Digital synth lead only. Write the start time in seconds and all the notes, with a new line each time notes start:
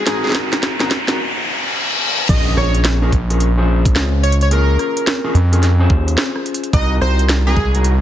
0.07 G#4
0.24 G#4
2.30 D#5
2.58 C#5
4.23 C#5
4.42 C#5
4.53 A#4
6.74 D#5
7.01 C5
7.47 G#4